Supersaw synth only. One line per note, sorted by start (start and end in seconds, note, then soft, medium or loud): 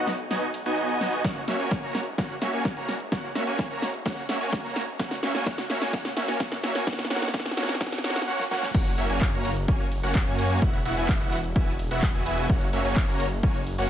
0.00 0.12 B3 medium
0.00 0.12 D#4 medium
0.00 0.12 F#4 medium
0.00 0.12 D#5 medium
0.00 0.12 F#5 medium
0.31 0.47 B3 medium
0.31 0.47 D#4 medium
0.31 0.47 F#4 medium
0.31 0.47 D#5 medium
0.31 0.47 G#5 medium
0.66 1.22 B3 medium
0.66 1.22 D#4 medium
0.66 1.22 F#4 medium
0.66 1.22 D#5 medium
0.66 1.22 G#5 loud
1.25 1.41 A#3 medium
1.25 1.41 C#4 medium
1.25 1.41 F#4 medium
1.25 1.41 C#5 medium
1.25 1.41 F#5 medium
1.48 1.57 A#3 medium
1.48 1.57 C#4 medium
1.48 1.57 F#4 medium
1.48 1.57 C#5 medium
1.48 1.57 E5 medium
1.60 1.80 A#3 medium
1.60 1.80 C#4 medium
1.60 1.80 F#4 medium
1.60 1.80 C#5 medium
1.60 1.80 G#5 medium
1.83 1.99 A#3 medium
1.83 1.99 C#4 medium
1.83 1.99 F#4 medium
1.83 1.99 C#5 medium
1.83 1.99 A#5 medium
2.18 2.34 A#3 medium
2.18 2.34 C#4 medium
2.18 2.34 F#4 medium
2.18 2.34 C#5 medium
2.18 2.34 F#5 medium
2.42 2.51 A#3 medium
2.42 2.51 C#4 medium
2.42 2.51 F#4 medium
2.42 2.51 C#5 medium
2.42 2.51 E5 medium
2.53 2.74 A#3 medium
2.53 2.74 C#4 medium
2.53 2.74 F#4 medium
2.53 2.74 C#5 medium
2.53 2.74 G#5 medium
2.77 2.93 A#3 medium
2.77 2.93 C#4 medium
2.77 2.93 F#4 medium
2.77 2.93 C#5 medium
2.77 2.93 A#5 medium
3.12 3.28 A#3 medium
3.12 3.28 C#4 medium
3.12 3.28 F#4 medium
3.12 3.28 C#5 medium
3.12 3.28 F#5 medium
3.35 3.44 A#3 medium
3.35 3.44 C#4 medium
3.35 3.44 F#4 medium
3.35 3.44 C#5 medium
3.35 3.44 E5 medium
3.47 3.68 A#3 medium
3.47 3.68 C#4 medium
3.47 3.68 F#4 medium
3.47 3.68 C#5 medium
3.47 3.68 G#5 medium
3.71 3.87 A#3 medium
3.71 3.87 C#4 medium
3.71 3.87 F#4 medium
3.71 3.87 C#5 medium
3.71 3.87 A#5 medium
4.06 4.22 A#3 medium
4.06 4.22 C#4 medium
4.06 4.22 F#4 medium
4.06 4.22 C#5 medium
4.06 4.22 F#5 medium
4.29 4.38 A#3 medium
4.29 4.38 C#4 medium
4.29 4.38 F#4 medium
4.29 4.38 C#5 medium
4.29 4.38 E5 medium
4.41 4.62 A#3 medium
4.41 4.62 C#4 medium
4.41 4.62 F#4 medium
4.41 4.62 C#5 medium
4.41 4.62 G#5 medium
4.64 4.80 A#3 medium
4.64 4.80 C#4 medium
4.64 4.80 F#4 medium
4.64 4.80 C#5 medium
4.64 4.80 A#5 medium
5.00 5.16 A#3 medium
5.00 5.16 C#4 medium
5.00 5.16 F#4 medium
5.00 5.16 C#5 medium
5.00 5.16 F#5 medium
5.23 5.32 A#3 medium
5.23 5.32 C#4 medium
5.23 5.32 F#4 medium
5.23 5.32 C#5 medium
5.23 5.32 E5 medium
5.35 5.45 A#3 medium
5.35 5.45 C#4 medium
5.35 5.45 F#4 medium
5.35 5.45 C#5 medium
5.35 5.45 G#5 medium
5.46 5.62 A#3 medium
5.46 5.62 C#4 medium
5.46 5.62 F#4 medium
5.46 5.62 C#5 medium
5.46 5.62 F#5 medium
5.70 5.79 A#3 medium
5.70 5.79 C#4 medium
5.70 5.79 F#4 medium
5.70 5.79 C#5 medium
5.70 5.79 E5 medium
5.82 5.91 A#3 medium
5.82 5.91 C#4 medium
5.82 5.91 F#4 medium
5.82 5.91 C#5 medium
5.82 5.91 G#5 medium
5.93 6.09 A#3 medium
5.93 6.09 C#4 medium
5.93 6.09 F#4 medium
5.93 6.09 C#5 medium
5.93 6.09 F#5 medium
6.17 6.26 A#3 medium
6.17 6.26 C#4 medium
6.17 6.26 F#4 medium
6.17 6.26 C#5 medium
6.17 6.26 E5 medium
6.28 6.38 A#3 medium
6.28 6.38 C#4 medium
6.28 6.38 F#4 medium
6.28 6.38 C#5 medium
6.28 6.38 G#5 medium
6.40 6.56 A#3 medium
6.40 6.56 C#4 medium
6.40 6.56 F#4 medium
6.40 6.56 C#5 medium
6.40 6.56 F#5 medium
6.64 6.73 A#3 medium
6.64 6.72 C#4 medium
6.64 6.72 F#4 medium
6.64 6.72 C#5 medium
6.64 6.72 E5 medium
6.75 6.85 A#3 medium
6.75 6.85 C#4 medium
6.75 6.85 F#4 medium
6.75 6.85 C#5 medium
6.75 6.85 G#5 medium
6.87 7.03 A#3 medium
6.87 7.03 C#4 medium
6.87 7.03 F#4 medium
6.87 7.03 C#5 medium
6.87 7.03 F#5 medium
7.10 7.26 A#3 medium
7.10 7.26 C#4 medium
7.10 7.26 F#4 medium
7.10 7.26 C#5 medium
7.10 7.26 F#5 medium
7.34 7.50 A#3 medium
7.34 7.50 C#4 medium
7.34 7.50 F#4 medium
7.34 7.50 C#5 medium
7.34 7.50 F#5 medium
7.57 7.73 A#3 medium
7.57 7.73 C#4 medium
7.57 7.73 F#4 medium
7.57 7.73 C#5 medium
7.57 7.73 F#5 medium
7.81 7.97 A#3 medium
7.81 7.97 C#4 medium
7.81 7.97 F#4 medium
7.81 7.97 C#5 medium
7.81 7.97 F#5 medium
8.04 8.20 A#3 medium
8.04 8.20 C#4 medium
8.04 8.20 F#4 medium
8.04 8.20 C#5 medium
8.04 8.20 F#5 medium
8.28 8.44 A#3 medium
8.28 8.44 C#4 medium
8.28 8.44 F#4 medium
8.28 8.44 C#5 medium
8.28 8.44 F#5 medium
8.51 8.67 A#3 medium
8.51 8.67 C#4 medium
8.51 8.67 F#4 medium
8.51 8.67 C#5 medium
8.51 8.67 F#5 medium
8.75 8.91 A#3 medium
8.75 8.91 C#4 medium
8.75 8.91 F#4 medium
8.75 8.91 C#5 medium
8.75 8.91 F#5 medium
8.98 9.07 A#3 medium
8.98 9.07 C#4 medium
8.98 9.07 F#4 medium
8.98 9.07 C#5 medium
8.98 9.07 E5 medium
9.10 9.30 A#3 medium
9.10 9.30 C#4 medium
9.10 9.30 F#4 medium
9.10 9.30 C#5 medium
9.10 9.30 G#5 medium
9.33 9.49 A#3 medium
9.33 9.49 C#4 medium
9.33 9.49 F#4 medium
9.33 9.49 C#5 medium
9.33 9.49 A#5 loud
9.68 9.84 A#3 medium
9.68 9.84 C#4 medium
9.68 9.84 F#4 medium
9.68 9.84 C#5 medium
9.68 9.84 G#5 medium
10.03 10.23 A#3 medium
10.03 10.23 C#4 medium
10.03 10.23 F#4 medium
10.03 10.23 C#5 medium
10.03 10.23 F#5 medium
10.27 10.59 A#3 medium
10.27 10.59 C#4 medium
10.27 10.59 F#4 medium
10.27 10.59 C#5 medium
10.27 10.59 G#5 loud
10.62 10.78 B3 medium
10.62 10.78 E4 medium
10.62 10.78 F#4 medium
10.62 10.78 E5 medium
10.62 10.78 F#5 medium
10.85 10.94 B3 medium
10.85 10.94 E4 medium
10.85 10.94 F#4 medium
10.85 10.94 E5 medium
10.85 10.94 F#5 medium
10.97 11.18 B3 medium
10.97 11.18 E4 medium
10.97 11.18 F#4 medium
10.97 11.18 E5 medium
10.97 11.18 G#5 medium
11.21 11.37 B3 medium
11.21 11.37 E4 medium
11.21 11.37 F#4 medium
11.21 11.37 E5 medium
11.21 11.37 F#5 loud
11.56 11.72 B3 medium
11.56 11.72 E4 medium
11.56 11.72 F#4 medium
11.56 11.72 E5 medium
11.56 11.72 G#5 medium
11.91 12.11 B3 medium
11.91 12.11 E4 medium
11.91 12.11 F#4 medium
11.91 12.11 E5 medium
11.91 12.11 F#5 medium
12.14 12.47 B3 medium
12.14 12.47 E4 medium
12.14 12.47 F#4 medium
12.14 12.47 E5 medium
12.14 12.47 G#5 loud
12.50 12.66 A#3 medium
12.50 12.66 C#4 medium
12.50 12.66 F#4 medium
12.50 12.66 C#5 medium
12.50 12.66 F#5 medium
12.73 12.82 A#3 medium
12.73 12.82 C#4 medium
12.73 12.82 F#4 medium
12.73 12.82 C#5 medium
12.73 12.82 E5 medium
12.85 13.05 A#3 medium
12.85 13.05 C#4 medium
12.85 13.05 F#4 medium
12.85 13.05 C#5 medium
12.85 13.05 G#5 medium
13.08 13.24 A#3 medium
13.08 13.24 C#4 medium
13.08 13.24 F#4 medium
13.08 13.24 C#5 medium
13.08 13.24 A#5 loud
13.43 13.59 A#3 medium
13.43 13.59 C#4 medium
13.43 13.59 F#4 medium
13.43 13.59 C#5 medium
13.43 13.59 G#5 loud
13.78 13.90 A#3 medium
13.78 13.90 C#4 medium
13.78 13.90 F#4 medium
13.78 13.90 C#5 medium
13.78 13.90 F#5 medium